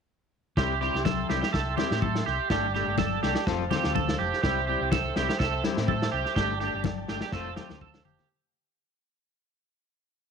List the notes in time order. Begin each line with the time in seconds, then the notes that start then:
0.57 C2 G3 C4 E4 G4 E5 G5 C6, kick, snare, muted conga
0.80 G3 C4 E4 G4, snare, muted conga
0.94 C2 C4 E4 G4, snare
1.05 A4, kick, snare, high conga
1.29 C2 G3 C4 E4 G4, snare
1.41 G4, snare
1.53 C2 A4, kick, snare, muted conga
1.77 G3 C4 E4 G4, snare, high conga
1.91 A2 C4 E4 G4, snare
2.02 A4, kick, high conga
2.15 snare
2.26 C2 G4, snare, muted conga
2.50 G1 G3 A3 D4 G4 A4 D5 A5, kick, snare, muted conga
2.74 G3 A3 D4 G4 A4, snare, muted conga
2.87 G1 A3 D4 A4
2.98 A4, kick, snare, high conga
3.23 C2 G3 A3 D4 G4 A4, snare
3.35 G4, snare
3.47 F1 F3 C4 F4 A4 C5 F5, muted clean electric guitar stroke, kick, snare, muted conga
3.71 F3 C4 F4 G4 A4, snare, high conga, low conga
3.84 D2 C4 F4 A4, snare
3.95 A4, kick, high conga, low conga
4.09 snare
4.19 F1 G4, muted conga
4.33 snare
4.43 C2 G3 C4 E4 G4 C5 E5 G5, kick, snare, muted conga
4.67 G3 C4 E4 G4, muted conga
4.81 C2 C4 E4 G4
4.91 A4, kick, snare, high conga
5.16 C2 G3 C4 E4 G4, snare
5.29 G4, snare
5.39 C2 A4, kick, snare, muted conga
5.64 G3 C4 E4 G4, snare, high conga
5.77 A2 C4 E4 G4, snare
5.88 A4, kick, high conga
6.02 snare
6.12 C2 G4
6.26 snare
6.36 G1 A3 D4 G4 D5 A5, kick, snare, muted conga
6.60 A3 D4 G4, snare, muted conga
6.74 G1 D4 G4
6.84 muted clean electric guitar stroke, kick, snare, high conga
7.08 G1 A3 D4 G4, snare
7.21 G4, snare
7.32 F1 A3 C4 F4 A4 C5 F5, kick, snare
7.56 A3 C4 G4, snare, high conga, low conga
7.61 F4
7.70 D2 C4 F4, snare, high conga
7.81 A4, kick, high conga
7.94 snare, high conga
8.05 F1 G4, low conga
8.19 snare, low conga